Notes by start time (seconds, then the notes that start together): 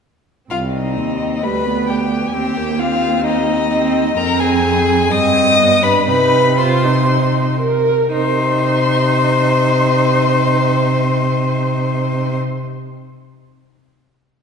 0.50 C2 C4 F4 F5
0.73 D#4 D#5
0.97 D#2
1.43 D2 G3 B4 B5
1.66 B3
1.87 G4 G5
2.27 G#5
2.33 D#2 C4 G4 G5
2.57 A#3
2.79 C4 F4 F5
3.25 D#4 D#5
3.71 C4
4.17 F2 C4 A#4 A#5
4.40 G#4 G#5
5.11 G2 C4 D#5 D#6
5.59 B3
5.83 D4 B4 B5
6.07 C3 D#4 B4 B5
6.58 F4 C5 C6
6.83 D#4
7.61 A#4
8.13 C3 D#4 C5 C6